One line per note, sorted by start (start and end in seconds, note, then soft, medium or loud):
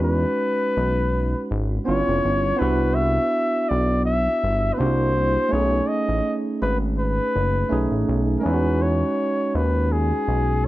0.00 0.25 E2 loud
0.00 1.80 G#3 medium
0.00 1.81 C#4 medium
0.00 1.82 D#4 soft
0.00 1.83 F#4 medium
0.00 1.55 B4 medium
0.77 1.35 B1 medium
1.51 1.79 G#1 medium
1.85 2.03 G1 loud
1.85 2.55 B3 medium
1.85 2.59 C#4 soft
1.85 2.59 E4 soft
1.85 2.60 F4 medium
1.85 2.60 C#5 medium
2.08 2.20 F1 medium
2.25 2.53 G1 medium
2.56 4.73 B3 medium
2.56 4.74 D4 medium
2.56 2.96 B4 medium
2.60 3.19 C2 loud
2.60 4.75 E4 medium
2.60 4.76 F#4 medium
2.95 3.70 E5 loud
3.69 4.28 B1 medium
3.69 4.05 D5 medium
4.05 4.75 E5 medium
4.44 4.72 G1 medium
4.74 5.50 A#3 medium
4.74 4.80 B4 medium
4.78 5.37 C2 medium
4.78 5.51 D4 medium
4.78 4.86 D#4 soft
4.78 5.52 F#4 medium
4.78 5.53 C5 medium
4.86 5.55 E4 soft
5.49 7.65 A3 medium
5.49 7.66 C#4 medium
5.49 7.67 D#4 medium
5.49 5.89 C#5 medium
5.53 5.81 B1 loud
5.53 7.68 G#4 medium
5.88 6.35 D#5 medium
6.09 6.21 A1 medium
6.62 7.20 G#1 medium
6.62 6.78 B4 medium
6.99 8.04 B4 medium
7.36 7.64 F#1 medium
7.69 7.87 B1 medium
7.69 8.43 A3 medium
7.69 8.42 C#4 medium
7.69 8.44 D#4 medium
7.69 8.45 G#4 medium
7.91 8.04 A1 medium
8.09 8.37 B1 medium
8.39 10.68 G#3 medium
8.39 8.47 A#4 medium
8.43 9.03 E2 medium
8.43 10.68 C#4 medium
8.43 10.68 D#4 medium
8.43 8.52 E4 medium
8.43 8.84 B4 medium
8.54 10.68 F#4 medium
8.82 9.57 C#5 medium
9.55 10.13 D#2 medium
9.55 9.93 B4 medium
9.92 10.66 G#4 medium
10.28 10.68 B1 medium